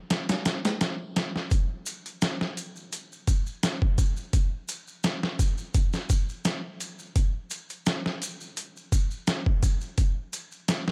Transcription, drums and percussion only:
0.10 snare loud
0.10 closed hi-hat medium
0.29 snare loud
0.29 closed hi-hat medium
0.45 snare loud
0.45 closed hi-hat medium
0.65 snare loud
0.65 closed hi-hat medium
0.81 snare loud
0.81 closed hi-hat medium
1.16 snare loud
1.16 closed hi-hat medium
1.36 snare soft
1.51 kick loud
1.51 closed hi-hat medium
1.51 maracas soft
1.86 closed hi-hat medium
1.86 maracas loud
2.06 closed hi-hat soft
2.06 maracas soft
2.22 snare loud
2.22 closed hi-hat medium
2.22 maracas medium
2.41 snare soft
2.57 closed hi-hat medium
2.57 maracas medium
2.76 maracas soft
2.93 closed hi-hat medium
2.93 maracas soft
3.12 maracas soft
3.27 kick medium
3.27 closed hi-hat medium
3.27 maracas medium
3.46 maracas soft
3.63 snare loud
3.63 closed hi-hat medium
3.63 maracas medium
3.82 kick medium
3.98 kick medium
3.98 closed hi-hat medium
3.98 maracas medium
4.17 maracas soft
4.33 kick loud
4.33 closed hi-hat medium
4.33 maracas medium
4.68 closed hi-hat medium
4.68 maracas medium
4.87 maracas soft
5.03 snare loud
5.03 closed hi-hat medium
5.03 maracas soft
5.23 snare medium
5.39 kick medium
5.39 closed hi-hat medium
5.39 maracas medium
5.58 maracas soft
5.74 kick loud
5.74 closed hi-hat medium
5.74 maracas soft
5.93 snare soft
5.93 maracas soft
6.10 kick loud
6.10 closed hi-hat medium
6.10 maracas medium
6.29 maracas soft
6.45 snare loud
6.45 closed hi-hat medium
6.45 maracas medium
6.80 closed hi-hat medium
6.80 maracas medium
6.99 maracas soft
7.16 kick loud
7.16 closed hi-hat medium
7.16 maracas medium
7.50 closed hi-hat medium
7.50 maracas medium
7.70 closed hi-hat soft
7.70 maracas soft
7.86 snare loud
7.86 closed hi-hat medium
7.86 maracas soft
8.06 snare soft
8.22 closed hi-hat medium
8.22 maracas loud
8.41 maracas soft
8.57 closed hi-hat medium
8.57 maracas soft
8.77 maracas soft
8.92 kick medium
8.92 closed hi-hat medium
8.92 maracas medium
9.11 maracas soft
9.27 snare loud
9.27 closed hi-hat medium
9.27 maracas medium
9.46 kick medium
9.63 kick medium
9.63 closed hi-hat medium
9.63 maracas loud
9.81 maracas soft
9.98 kick loud
9.98 closed hi-hat medium
9.98 maracas soft
10.33 closed hi-hat medium
10.33 maracas loud
10.52 maracas soft
10.68 snare loud
10.68 closed hi-hat medium
10.68 maracas medium
10.88 snare medium

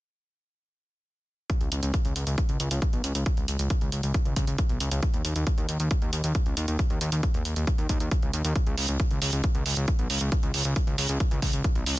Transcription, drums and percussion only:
1.50 kick loud
1.50 closed hi-hat medium
1.61 closed hi-hat soft
1.72 closed hi-hat medium
1.83 closed hi-hat soft
1.94 kick loud
1.94 closed hi-hat soft
2.05 closed hi-hat soft
2.16 closed hi-hat medium
2.27 closed hi-hat medium
2.38 kick loud
2.38 closed hi-hat soft
2.49 closed hi-hat soft
2.60 closed hi-hat medium
2.71 closed hi-hat soft
2.82 kick loud
2.82 closed hi-hat soft
2.93 closed hi-hat soft
3.04 closed hi-hat medium
3.15 closed hi-hat soft
3.26 kick loud
3.26 closed hi-hat soft
3.37 closed hi-hat soft
3.48 closed hi-hat medium
3.59 closed hi-hat soft
3.70 kick loud
3.70 closed hi-hat soft
3.81 closed hi-hat soft
3.92 closed hi-hat medium
4.03 closed hi-hat soft
4.14 kick loud
4.14 closed hi-hat soft
4.25 closed hi-hat soft
4.36 kick medium
4.36 closed hi-hat medium
4.47 closed hi-hat soft
4.58 kick loud
4.58 closed hi-hat soft
4.69 closed hi-hat soft
4.80 closed hi-hat medium
4.91 closed hi-hat soft
5.03 kick loud
5.03 closed hi-hat soft
5.14 closed hi-hat soft
5.25 closed hi-hat medium
5.36 closed hi-hat soft
5.47 kick loud
5.47 closed hi-hat soft
5.58 closed hi-hat soft
5.69 closed hi-hat medium
5.80 closed hi-hat soft
5.91 kick loud
5.91 closed hi-hat soft
6.02 closed hi-hat soft
6.13 closed hi-hat medium
6.24 closed hi-hat soft
6.35 kick loud
6.35 closed hi-hat soft
6.46 closed hi-hat soft
6.57 closed hi-hat medium
6.68 closed hi-hat soft
6.79 kick loud
6.79 closed hi-hat soft
6.90 closed hi-hat soft
7.01 closed hi-hat medium
7.12 closed hi-hat soft
7.23 kick loud
7.23 closed hi-hat soft
7.34 closed hi-hat soft
7.45 closed hi-hat medium
7.56 closed hi-hat soft
7.67 kick loud
7.67 closed hi-hat soft
7.78 closed hi-hat soft
7.89 kick medium
7.89 closed hi-hat medium
8.00 closed hi-hat soft
8.11 kick loud
8.11 closed hi-hat soft
8.22 closed hi-hat soft
8.33 closed hi-hat medium
8.45 closed hi-hat soft
8.56 kick loud
8.56 closed hi-hat soft
8.67 closed hi-hat soft
8.78 open hi-hat loud
9.00 kick loud
9.00 closed hi-hat soft
9.11 closed hi-hat soft
9.22 open hi-hat loud
9.33 closed hi-hat soft
9.44 kick loud
9.44 closed hi-hat soft
9.55 closed hi-hat soft
9.66 open hi-hat medium
9.77 closed hi-hat soft
9.88 kick loud
9.88 closed hi-hat soft
9.99 closed hi-hat soft
10.10 open hi-hat loud
10.21 closed hi-hat soft
10.32 kick loud
10.32 closed hi-hat soft
10.43 closed hi-hat soft
10.54 open hi-hat loud
10.65 closed hi-hat soft
10.76 kick loud
10.76 closed hi-hat soft
10.87 closed hi-hat soft
10.98 open hi-hat loud
11.09 closed hi-hat medium
11.20 kick loud
11.20 closed hi-hat soft
11.31 closed hi-hat soft
11.42 kick medium
11.42 open hi-hat medium
11.53 closed hi-hat soft
11.64 kick loud
11.64 closed hi-hat soft
11.75 closed hi-hat soft
11.86 open hi-hat medium

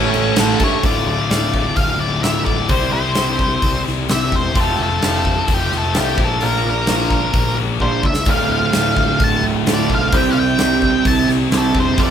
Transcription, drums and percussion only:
0.14 crash medium
0.36 snare loud
0.36 crash medium
0.60 kick medium
0.60 crash medium
0.83 kick loud
0.83 open hi-hat medium
1.31 snare loud
1.31 open hi-hat medium
1.54 kick medium
1.76 kick loud
1.76 open hi-hat medium
2.23 snare loud
2.23 open hi-hat medium
2.46 kick medium
2.69 kick loud
2.69 open hi-hat medium
3.15 snare loud
3.15 open hi-hat medium
3.39 kick medium
3.62 kick loud
3.62 open hi-hat medium
3.87 snare soft
4.09 snare loud
4.09 open hi-hat medium
4.32 kick medium
4.55 kick loud
4.55 open hi-hat medium
5.02 snare loud
5.02 open hi-hat medium
5.25 kick medium
5.48 kick loud
5.48 open hi-hat medium
5.72 snare soft
5.94 snare loud
5.94 open hi-hat medium
6.18 kick loud
6.41 open hi-hat medium
6.87 snare loud
6.87 open hi-hat medium
7.10 kick medium
7.33 kick loud
7.33 open hi-hat medium
7.80 kick medium
8.03 kick medium
8.14 snare medium
8.25 kick loud
8.25 open hi-hat medium
8.73 snare loud
8.73 open hi-hat medium
8.97 kick medium
9.20 kick loud
9.20 open hi-hat soft
9.66 snare loud
9.66 open hi-hat medium
9.90 kick medium
10.12 kick loud
10.12 open hi-hat medium
10.58 snare loud
10.58 open hi-hat medium
10.82 kick medium
11.05 kick loud
11.05 open hi-hat medium
11.29 snare soft
11.52 snare loud
11.52 open hi-hat medium
11.75 kick medium
11.98 kick loud
11.98 open hi-hat medium

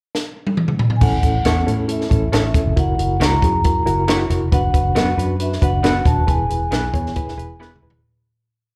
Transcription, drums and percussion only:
0.15 snare medium
0.47 high tom medium
0.57 mid tom medium
0.68 mid tom medium
0.79 floor tom loud
0.90 floor tom medium
1.01 kick medium
1.01 crash medium
1.23 kick medium
1.23 closed hi-hat medium
1.45 snare loud
1.45 closed hi-hat medium
1.68 closed hi-hat medium
1.89 closed hi-hat medium
2.01 snare soft
2.11 kick medium
2.11 closed hi-hat medium
2.33 snare loud
2.33 closed hi-hat medium
2.54 kick loud
2.54 closed hi-hat medium
2.77 kick medium
2.77 closed hi-hat medium
2.99 closed hi-hat medium
3.21 snare loud
3.21 closed hi-hat medium
3.42 kick medium
3.42 closed hi-hat medium
3.64 kick medium
3.64 closed hi-hat medium
3.87 closed hi-hat medium
4.08 snare loud
4.08 closed hi-hat medium
4.30 closed hi-hat medium
4.52 kick loud
4.52 closed hi-hat medium
4.74 kick medium
4.74 closed hi-hat medium
4.96 snare loud
4.96 closed hi-hat medium
5.19 closed hi-hat medium
5.40 closed hi-hat medium
5.53 snare soft
5.62 kick medium
5.62 closed hi-hat medium
5.84 snare loud
5.84 closed hi-hat medium
6.05 kick loud
6.05 closed hi-hat medium
6.28 kick loud
6.28 closed hi-hat medium
6.50 closed hi-hat medium
6.72 snare loud
6.72 closed hi-hat medium
6.94 kick medium
6.94 closed hi-hat medium
7.06 snare soft
7.16 kick medium
7.16 closed hi-hat medium
7.29 snare soft
7.39 closed hi-hat medium
7.62 snare medium
7.76 mid tom medium
7.90 floor tom loud

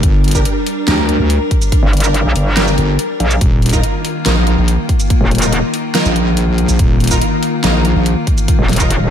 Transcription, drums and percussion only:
0.03 kick loud
0.03 closed hi-hat medium
0.24 closed hi-hat soft
0.28 closed hi-hat medium
0.31 kick medium
0.31 closed hi-hat medium
0.31 shaker medium
0.45 closed hi-hat medium
0.67 open hi-hat medium
0.88 snare loud
0.88 closed hi-hat medium
1.09 closed hi-hat medium
1.30 closed hi-hat medium
1.51 kick loud
1.51 closed hi-hat medium
1.62 closed hi-hat soft
1.62 shaker soft
1.72 kick loud
1.72 closed hi-hat medium
1.93 closed hi-hat soft
1.97 closed hi-hat medium
2.00 closed hi-hat medium
2.00 shaker medium
2.14 closed hi-hat medium
2.36 open hi-hat medium
2.57 snare loud
2.57 closed hi-hat medium
2.67 shaker soft
2.78 closed hi-hat medium
2.99 closed hi-hat medium
3.20 closed hi-hat medium
3.31 closed hi-hat soft
3.31 shaker medium
3.41 kick loud
3.41 closed hi-hat medium
3.62 closed hi-hat soft
3.66 closed hi-hat medium
3.69 kick medium
3.69 closed hi-hat medium
3.69 shaker medium
3.83 closed hi-hat medium
4.05 open hi-hat medium
4.26 snare loud
4.26 closed hi-hat medium
4.47 closed hi-hat soft
4.68 closed hi-hat medium
4.89 kick loud
4.89 closed hi-hat medium
5.00 closed hi-hat soft
5.00 shaker medium
5.10 kick loud
5.10 closed hi-hat medium
5.31 closed hi-hat soft
5.35 closed hi-hat medium
5.38 closed hi-hat medium
5.38 shaker medium
5.52 closed hi-hat medium
5.74 open hi-hat medium
5.95 snare loud
5.95 closed hi-hat medium
6.05 shaker medium
6.16 closed hi-hat medium
6.37 closed hi-hat medium
6.58 closed hi-hat soft
6.69 closed hi-hat soft
6.69 shaker medium
6.79 kick loud
6.79 closed hi-hat medium
7.00 closed hi-hat soft
7.04 closed hi-hat medium
7.07 kick medium
7.07 closed hi-hat medium
7.07 shaker medium
7.22 closed hi-hat medium
7.43 open hi-hat medium
7.64 snare loud
7.64 closed hi-hat medium
7.85 closed hi-hat medium
8.06 closed hi-hat medium
8.27 kick loud
8.27 closed hi-hat medium
8.38 closed hi-hat soft
8.38 shaker medium
8.48 kick loud
8.48 closed hi-hat medium
8.69 snare medium
8.69 closed hi-hat soft
8.73 closed hi-hat medium
8.76 kick medium
8.76 closed hi-hat medium
8.76 shaker medium
8.90 closed hi-hat medium

